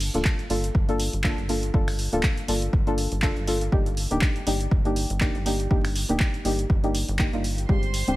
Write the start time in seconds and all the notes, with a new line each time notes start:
0.00 open hi-hat
0.14 D1 A#3 D4 F4 A4, closed hi-hat
0.25 kick, clap
0.39 closed hi-hat
0.50 G1 A#3 D4 F4 A4, open hi-hat
0.64 closed hi-hat
0.75 G1, kick
0.88 A#3 D4 F4 A4, closed hi-hat
1.00 open hi-hat
1.13 G1, closed hi-hat
1.24 A#3 D4 F4 A4, kick, clap
1.38 G1, closed hi-hat
1.49 A#3 D4 F4 A4, open hi-hat
1.63 closed hi-hat
1.73 G1 A#3 D4 F4 A4, kick
1.88 finger snap, open hi-hat
1.99 open hi-hat
2.12 D1 A#3 D4 F4 A4, closed hi-hat
2.23 kick, clap
2.37 closed hi-hat
2.48 G1 A#3 D4 F4 A4, open hi-hat
2.62 closed hi-hat
2.73 G1, kick
2.87 A#3 D4 F4 A4, closed hi-hat
2.98 open hi-hat
3.12 G1, closed hi-hat
3.22 A#3 D4 F4 A4, kick, clap
3.37 G1, closed hi-hat
3.47 A#3 D4 F4 A4, open hi-hat
3.61 closed hi-hat
3.72 G1 A#3 D4 D#4 G4, kick
3.86 closed hi-hat
3.97 open hi-hat
4.11 D1 A#3 D4 D#4 G4, closed hi-hat
4.21 kick, clap
4.36 closed hi-hat
4.46 G1 A#3 D4 D#4 G4, open hi-hat
4.61 closed hi-hat
4.71 G1, kick
4.85 A#3 D4 D#4 G4, closed hi-hat
4.96 open hi-hat
5.10 G1, closed hi-hat
5.21 A#3 D4 D#4 G4, kick, clap
5.35 G1, closed hi-hat
5.45 A#3 D4 D#4 G4, open hi-hat
5.60 closed hi-hat
5.70 G1 A#3 D4 D#4 G4, kick
5.85 finger snap, open hi-hat
5.95 open hi-hat
6.09 D1 A#3 D4 D#4 G4, closed hi-hat
6.20 kick, clap
6.34 closed hi-hat
6.45 G1 A#3 D4 D#4 G4, open hi-hat
6.59 closed hi-hat
6.70 G1, kick
6.83 A#3 D4 D#4 G4, closed hi-hat
6.95 open hi-hat
7.08 G1, closed hi-hat
7.19 A#3 D4 D#4 G4, kick, clap
7.33 G1 A#3 D4 D#4 F4, closed hi-hat
7.44 open hi-hat
7.58 closed hi-hat
7.68 G1 G#3 C4 D4 G4 C5 C6, kick
7.83 closed hi-hat
7.94 open hi-hat
8.07 D1 G#3 C4 D4 G4, closed hi-hat